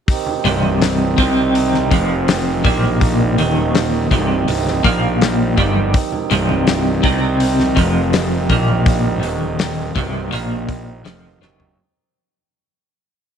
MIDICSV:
0, 0, Header, 1, 5, 480
1, 0, Start_track
1, 0, Key_signature, -3, "minor"
1, 0, Tempo, 730816
1, 54, Time_signature, 4, 2, 24, 8
1, 8783, End_track
2, 0, Start_track
2, 0, Title_t, "Harmonium"
2, 0, Program_c, 0, 20
2, 56, Note_on_c, 0, 67, 85
2, 57, Note_on_c, 0, 63, 73
2, 58, Note_on_c, 0, 51, 77
2, 59, Note_on_c, 0, 60, 73
2, 7714, Note_off_c, 0, 67, 0
2, 7715, Note_off_c, 0, 51, 0
2, 7715, Note_off_c, 0, 63, 0
2, 7716, Note_off_c, 0, 60, 0
2, 8783, End_track
3, 0, Start_track
3, 0, Title_t, "Clean electric guitar"
3, 0, Program_c, 1, 27
3, 296, Note_on_c, 1, 36, 99
3, 770, Note_off_c, 1, 36, 0
3, 774, Note_on_c, 1, 48, 100
3, 1250, Note_off_c, 1, 48, 0
3, 1260, Note_on_c, 1, 41, 97
3, 1733, Note_off_c, 1, 41, 0
3, 1736, Note_on_c, 1, 46, 110
3, 2212, Note_off_c, 1, 46, 0
3, 2223, Note_on_c, 1, 39, 95
3, 2696, Note_off_c, 1, 39, 0
3, 2702, Note_on_c, 1, 36, 96
3, 2935, Note_off_c, 1, 36, 0
3, 2945, Note_on_c, 1, 36, 68
3, 3136, Note_off_c, 1, 36, 0
3, 3182, Note_on_c, 1, 46, 97
3, 3656, Note_off_c, 1, 46, 0
3, 3661, Note_on_c, 1, 43, 104
3, 3895, Note_off_c, 1, 43, 0
3, 4144, Note_on_c, 1, 36, 100
3, 4617, Note_off_c, 1, 36, 0
3, 4618, Note_on_c, 1, 48, 99
3, 5094, Note_off_c, 1, 48, 0
3, 5096, Note_on_c, 1, 41, 100
3, 5572, Note_off_c, 1, 41, 0
3, 5582, Note_on_c, 1, 46, 99
3, 6060, Note_off_c, 1, 46, 0
3, 6060, Note_on_c, 1, 39, 92
3, 6533, Note_off_c, 1, 39, 0
3, 6539, Note_on_c, 1, 36, 97
3, 6773, Note_off_c, 1, 36, 0
3, 6781, Note_on_c, 1, 46, 97
3, 7253, Note_off_c, 1, 46, 0
3, 7256, Note_on_c, 1, 41, 112
3, 7490, Note_off_c, 1, 41, 0
3, 7497, Note_on_c, 1, 42, 107
3, 7731, Note_off_c, 1, 42, 0
3, 8783, End_track
4, 0, Start_track
4, 0, Title_t, "Fingered electric bass"
4, 0, Program_c, 2, 33
4, 291, Note_on_c, 2, 24, 95
4, 748, Note_off_c, 2, 24, 0
4, 774, Note_on_c, 2, 36, 91
4, 1231, Note_off_c, 2, 36, 0
4, 1257, Note_on_c, 2, 29, 88
4, 1713, Note_off_c, 2, 29, 0
4, 1736, Note_on_c, 2, 34, 97
4, 2193, Note_off_c, 2, 34, 0
4, 2220, Note_on_c, 2, 27, 88
4, 2675, Note_off_c, 2, 27, 0
4, 2698, Note_on_c, 2, 24, 97
4, 2924, Note_off_c, 2, 24, 0
4, 2938, Note_on_c, 2, 24, 81
4, 3164, Note_off_c, 2, 24, 0
4, 3181, Note_on_c, 2, 34, 92
4, 3637, Note_off_c, 2, 34, 0
4, 3662, Note_on_c, 2, 31, 96
4, 3886, Note_off_c, 2, 31, 0
4, 4143, Note_on_c, 2, 24, 87
4, 4598, Note_off_c, 2, 24, 0
4, 4622, Note_on_c, 2, 36, 97
4, 5077, Note_off_c, 2, 36, 0
4, 5103, Note_on_c, 2, 29, 87
4, 5557, Note_off_c, 2, 29, 0
4, 5580, Note_on_c, 2, 34, 97
4, 6035, Note_off_c, 2, 34, 0
4, 6058, Note_on_c, 2, 27, 88
4, 6513, Note_off_c, 2, 27, 0
4, 6540, Note_on_c, 2, 24, 92
4, 6764, Note_off_c, 2, 24, 0
4, 6775, Note_on_c, 2, 34, 96
4, 7231, Note_off_c, 2, 34, 0
4, 7254, Note_on_c, 2, 29, 95
4, 7480, Note_off_c, 2, 29, 0
4, 7496, Note_on_c, 2, 30, 92
4, 7720, Note_off_c, 2, 30, 0
4, 8783, End_track
5, 0, Start_track
5, 0, Title_t, "Drums"
5, 53, Note_on_c, 9, 36, 107
5, 53, Note_on_c, 9, 46, 75
5, 119, Note_off_c, 9, 36, 0
5, 119, Note_off_c, 9, 46, 0
5, 173, Note_on_c, 9, 64, 60
5, 239, Note_off_c, 9, 64, 0
5, 296, Note_on_c, 9, 46, 58
5, 361, Note_off_c, 9, 46, 0
5, 411, Note_on_c, 9, 63, 74
5, 477, Note_off_c, 9, 63, 0
5, 536, Note_on_c, 9, 46, 82
5, 541, Note_on_c, 9, 38, 111
5, 602, Note_off_c, 9, 46, 0
5, 606, Note_off_c, 9, 38, 0
5, 775, Note_on_c, 9, 36, 83
5, 777, Note_on_c, 9, 46, 55
5, 779, Note_on_c, 9, 64, 72
5, 841, Note_off_c, 9, 36, 0
5, 843, Note_off_c, 9, 46, 0
5, 845, Note_off_c, 9, 64, 0
5, 1019, Note_on_c, 9, 46, 79
5, 1085, Note_off_c, 9, 46, 0
5, 1137, Note_on_c, 9, 63, 67
5, 1144, Note_on_c, 9, 38, 32
5, 1202, Note_off_c, 9, 63, 0
5, 1210, Note_off_c, 9, 38, 0
5, 1257, Note_on_c, 9, 36, 91
5, 1259, Note_on_c, 9, 46, 65
5, 1323, Note_off_c, 9, 36, 0
5, 1325, Note_off_c, 9, 46, 0
5, 1498, Note_on_c, 9, 46, 78
5, 1503, Note_on_c, 9, 38, 104
5, 1564, Note_off_c, 9, 46, 0
5, 1569, Note_off_c, 9, 38, 0
5, 1738, Note_on_c, 9, 36, 91
5, 1738, Note_on_c, 9, 46, 61
5, 1738, Note_on_c, 9, 64, 63
5, 1804, Note_off_c, 9, 36, 0
5, 1804, Note_off_c, 9, 46, 0
5, 1804, Note_off_c, 9, 64, 0
5, 1858, Note_on_c, 9, 63, 70
5, 1923, Note_off_c, 9, 63, 0
5, 1979, Note_on_c, 9, 36, 109
5, 1979, Note_on_c, 9, 46, 77
5, 2045, Note_off_c, 9, 36, 0
5, 2045, Note_off_c, 9, 46, 0
5, 2100, Note_on_c, 9, 64, 62
5, 2166, Note_off_c, 9, 64, 0
5, 2222, Note_on_c, 9, 46, 59
5, 2288, Note_off_c, 9, 46, 0
5, 2339, Note_on_c, 9, 63, 65
5, 2405, Note_off_c, 9, 63, 0
5, 2461, Note_on_c, 9, 46, 79
5, 2466, Note_on_c, 9, 38, 107
5, 2527, Note_off_c, 9, 46, 0
5, 2531, Note_off_c, 9, 38, 0
5, 2701, Note_on_c, 9, 36, 78
5, 2701, Note_on_c, 9, 64, 69
5, 2703, Note_on_c, 9, 46, 55
5, 2766, Note_off_c, 9, 36, 0
5, 2767, Note_off_c, 9, 64, 0
5, 2769, Note_off_c, 9, 46, 0
5, 2943, Note_on_c, 9, 46, 74
5, 3009, Note_off_c, 9, 46, 0
5, 3061, Note_on_c, 9, 63, 74
5, 3070, Note_on_c, 9, 38, 35
5, 3127, Note_off_c, 9, 63, 0
5, 3135, Note_off_c, 9, 38, 0
5, 3182, Note_on_c, 9, 36, 86
5, 3184, Note_on_c, 9, 46, 57
5, 3248, Note_off_c, 9, 36, 0
5, 3250, Note_off_c, 9, 46, 0
5, 3425, Note_on_c, 9, 46, 71
5, 3429, Note_on_c, 9, 38, 116
5, 3491, Note_off_c, 9, 46, 0
5, 3495, Note_off_c, 9, 38, 0
5, 3660, Note_on_c, 9, 64, 67
5, 3662, Note_on_c, 9, 36, 89
5, 3663, Note_on_c, 9, 46, 53
5, 3726, Note_off_c, 9, 64, 0
5, 3728, Note_off_c, 9, 36, 0
5, 3729, Note_off_c, 9, 46, 0
5, 3780, Note_on_c, 9, 63, 76
5, 3846, Note_off_c, 9, 63, 0
5, 3901, Note_on_c, 9, 46, 77
5, 3903, Note_on_c, 9, 36, 105
5, 3966, Note_off_c, 9, 46, 0
5, 3968, Note_off_c, 9, 36, 0
5, 4021, Note_on_c, 9, 64, 69
5, 4086, Note_off_c, 9, 64, 0
5, 4143, Note_on_c, 9, 46, 58
5, 4208, Note_off_c, 9, 46, 0
5, 4261, Note_on_c, 9, 63, 75
5, 4327, Note_off_c, 9, 63, 0
5, 4380, Note_on_c, 9, 46, 73
5, 4384, Note_on_c, 9, 38, 103
5, 4445, Note_off_c, 9, 46, 0
5, 4450, Note_off_c, 9, 38, 0
5, 4620, Note_on_c, 9, 46, 53
5, 4622, Note_on_c, 9, 36, 82
5, 4624, Note_on_c, 9, 64, 67
5, 4685, Note_off_c, 9, 46, 0
5, 4688, Note_off_c, 9, 36, 0
5, 4690, Note_off_c, 9, 64, 0
5, 4862, Note_on_c, 9, 46, 81
5, 4927, Note_off_c, 9, 46, 0
5, 4988, Note_on_c, 9, 63, 74
5, 4989, Note_on_c, 9, 38, 32
5, 5054, Note_off_c, 9, 63, 0
5, 5055, Note_off_c, 9, 38, 0
5, 5102, Note_on_c, 9, 36, 92
5, 5103, Note_on_c, 9, 46, 66
5, 5168, Note_off_c, 9, 36, 0
5, 5169, Note_off_c, 9, 46, 0
5, 5341, Note_on_c, 9, 46, 80
5, 5346, Note_on_c, 9, 38, 115
5, 5407, Note_off_c, 9, 46, 0
5, 5411, Note_off_c, 9, 38, 0
5, 5580, Note_on_c, 9, 46, 63
5, 5581, Note_on_c, 9, 36, 81
5, 5586, Note_on_c, 9, 64, 61
5, 5646, Note_off_c, 9, 46, 0
5, 5647, Note_off_c, 9, 36, 0
5, 5652, Note_off_c, 9, 64, 0
5, 5704, Note_on_c, 9, 63, 67
5, 5769, Note_off_c, 9, 63, 0
5, 5821, Note_on_c, 9, 36, 117
5, 5821, Note_on_c, 9, 46, 81
5, 5886, Note_off_c, 9, 36, 0
5, 5887, Note_off_c, 9, 46, 0
5, 5947, Note_on_c, 9, 64, 58
5, 6013, Note_off_c, 9, 64, 0
5, 6061, Note_on_c, 9, 46, 60
5, 6127, Note_off_c, 9, 46, 0
5, 6183, Note_on_c, 9, 63, 62
5, 6248, Note_off_c, 9, 63, 0
5, 6299, Note_on_c, 9, 46, 80
5, 6304, Note_on_c, 9, 38, 113
5, 6365, Note_off_c, 9, 46, 0
5, 6369, Note_off_c, 9, 38, 0
5, 6538, Note_on_c, 9, 46, 51
5, 6539, Note_on_c, 9, 36, 81
5, 6542, Note_on_c, 9, 64, 65
5, 6604, Note_off_c, 9, 46, 0
5, 6605, Note_off_c, 9, 36, 0
5, 6608, Note_off_c, 9, 64, 0
5, 6781, Note_on_c, 9, 46, 73
5, 6847, Note_off_c, 9, 46, 0
5, 7019, Note_on_c, 9, 36, 93
5, 7020, Note_on_c, 9, 46, 59
5, 7084, Note_off_c, 9, 36, 0
5, 7086, Note_off_c, 9, 46, 0
5, 7256, Note_on_c, 9, 63, 68
5, 7260, Note_on_c, 9, 46, 72
5, 7264, Note_on_c, 9, 38, 106
5, 7322, Note_off_c, 9, 63, 0
5, 7325, Note_off_c, 9, 46, 0
5, 7330, Note_off_c, 9, 38, 0
5, 7378, Note_on_c, 9, 63, 53
5, 7444, Note_off_c, 9, 63, 0
5, 7501, Note_on_c, 9, 38, 64
5, 7505, Note_on_c, 9, 64, 63
5, 7567, Note_off_c, 9, 38, 0
5, 7570, Note_off_c, 9, 64, 0
5, 7617, Note_on_c, 9, 43, 89
5, 7621, Note_on_c, 9, 64, 77
5, 7683, Note_off_c, 9, 43, 0
5, 7687, Note_off_c, 9, 64, 0
5, 8783, End_track
0, 0, End_of_file